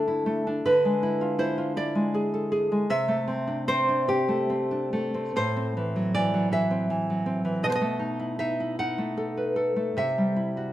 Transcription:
nylon-string guitar
Already playing: D3 A3 D4 A4
0.08 E4
0.26 A3
0.47 D4
0.65 D3 B4
0.85 G#3
1.03 E4
1.21 F4
1.39 E4 C5
1.58 F4
1.76 E4 D5
1.95 G#3
2.14 G#4
2.34 A4
2.52 G#4
2.72 G#3
2.90 C3 E5
3.08 A3
3.28 C4
3.47 D4
3.68 C4 C5
3.89 D4
4.08 C4 G4
4.28 A3
4.50 C4
4.71 D4
4.93 A3
5.14 C4
5.36 A2 C5
5.56 C4
5.77 E3
5.96 F#3
6.15 E3 D5
6.34 F#3
6.52 E3 E5
6.71 C4
6.90 E3
7.10 F#3
7.26 C4
7.45 E3
7.63 B2 D#5
7.70 C5
7.75 D#5
7.81 A3
7.99 D#4
8.19 E4
8.39 D#4 E5
8.60 E4
8.79 D#4 F#5
8.98 A3
9.17 A4
9.37 B4
9.56 A4
9.76 A3
9.97 C3 E5
10.18 G3
10.36 E4
10.57 F#4

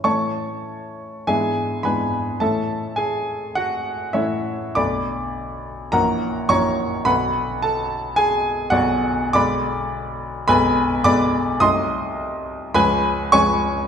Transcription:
grand piano
0.04 A2 E3 A3 C#4 C#5 A5 C#6
1.27 G#2 E3 B3 D4 G#4 E5 G#5
1.83 G#2 E3 B3 D4 B4 G#5 B5
2.40 A2 E3 A3 C#4 A4 E5 A5
2.96 G#4 G#5
3.55 F#4 F#5
4.13 A2 E3 A3 C#4 E4 C#5 E5
4.75 B1 D3 A3 D4 D5 B5 D6
5.92 A#1 E3 F#3 C#4 A#4 F#5 A#5
6.49 A#1 E3 F#3 C#4 C#5 A#5 C#6
7.05 B1 D3 F#3 B3 B4 F#5 B5
7.62 A4 A5
8.16 G#4 G#5
8.70 B1 D3 F#3 B3 F#4 D5 F#5
9.33 B1 D3 G#3 B3 D5 B5 D6
10.48 B1 D3 G#3 B3 B4 G#5 B5
11.04 B1 D3 G#3 B3 D5 B5 D6
11.60 C2 F#3 A3 D#4 D#5 C6 D#6
12.74 C#2 F3 G#3 C#4 B4 G#5 B5
13.32 C#2 F3 G#3 C#4 C#5 G#5 C#6

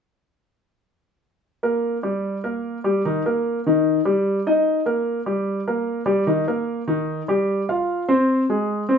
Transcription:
grand piano
1.63 A#3 A#4
2.03 G3 G4
2.44 A#3 A#4
2.84 G3 G4
3.05 D#3 D#4
3.26 A#3 A#4
3.66 D#3 D#4
4.05 G3 G4
4.47 D#4 D#5
4.86 A#3 A#4
5.26 G3 G4
5.68 A#3 A#4
6.06 G3 G4
6.27 D#3 D#4
6.48 A#3 A#4
6.88 D#3 D#4
7.28 G3 G4
7.69 F4 F5
8.08 C4 C5
8.49 G#3 G#4
8.89 C4 C5

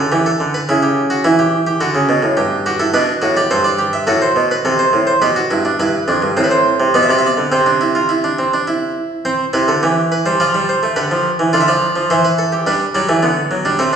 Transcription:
harpsichord
Already playing: D3 A4
0.12 E3 G4
0.26 A4
0.40 D3
0.54 B4
0.69 C#3 E4
0.83 G4
1.10 F#4
1.24 E3 E4
1.39 G4
1.67 G4
1.81 D3 F#4
1.95 C#3
2.09 B2
2.22 A2
2.37 G2 G4
2.66 F#4 G4
2.80 E4 A4
2.94 B2 D4 B4
3.22 A2 F#4
3.37 G4 D5
3.51 G2 A4 C5
3.64 D5
3.79 G4
3.93 E5
4.07 A2 F#4 A4
4.22 C5
4.36 B2
4.51 B4
4.65 C3 A4
4.79 C5
4.93 A2
5.07 C5
5.22 B2 G4 B4
5.36 F#4
5.51 G2 E4
5.65 D4
5.80 G2 E4 B4
6.08 F2 D4
6.22 G2
6.37 A2 C4 C5
6.44 B4
6.51 C5
6.80 C3
6.94 B2 B3 D5
7.03 E5
7.09 C3 D5
7.19 E5
7.26 D5
7.37 D3
7.52 C3 C4 C5
7.66 D4
7.81 E4
7.95 F4
8.09 E4
8.24 D4
8.39 C4
8.54 D4
8.67 E4
9.25 C4 C5
9.53 C3 E4 B4
9.68 D3 A4
9.83 E3 G4
10.12 B4
10.26 G3 C5
10.40 F3 F4 D5
10.54 G3
10.69 C5
10.83 A3
10.96 D3 G4 B4
11.11 F3
11.39 E3
11.53 D3 F4 D5
11.61 E5
11.68 F3 D5
11.96 F3
12.10 E3 E4 C5
12.25 B4
12.38 A4
12.52 G4
12.67 G3 D4 B4
12.95 F#3 G3 D5
13.09 E3 A3
13.23 D3 B3
13.51 F#3
13.65 G3 D4
13.79 A3 C4 A4

